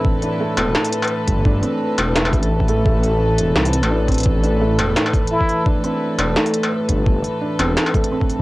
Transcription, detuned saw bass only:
X:1
M:4/4
L:1/16
Q:"Swing 16ths" 1/4=171
K:Am
V:1 name="Detuned saw bass" clef=bass
z6 E,,,2 z6 G,,,2- | G,,,2 z4 E,,,4 A,,,6 | A,,,6 E,,,2 C,,3 A,,,4- A,,,- | A,,,6 E,,,2 z8 |
z6 E,,,2 z6 G,,,2- | G,,,2 z4 E,,,2 z8 |]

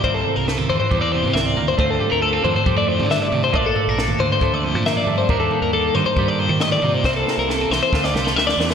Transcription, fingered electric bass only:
X:1
M:4/4
L:1/16
Q:1/4=137
K:Dm
V:1 name="Fingered electric bass" clef=bass
C,,2 z C,,3 E,, z E,,3 C, C,,2 D,,2 | D,,2 z D,,3 F,, z F,,3 D,3 C,2 | B,,,2 z B,,,3 D,, z D,,3 B,,3 G,,2 | _E,,2 z E,,3 G,, z G,,3 _E,3 C,2 |
C,,2 z C,,3 C,, z D,,2 C,,2 D,,2 E,,2 |]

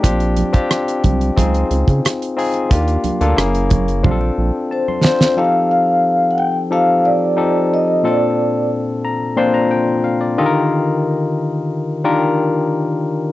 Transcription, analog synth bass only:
X:1
M:4/4
L:1/16
Q:1/4=90
K:Bb
V:1 name="Analog synth bass" clef=bass
B,,,3 C,, z2 C,,2 _D,,2 D,, _D, z4 | E,,2 D,, D,, _G,,,4 B,,,2 B,,, z4 z | z16 | z16 |
z16 |]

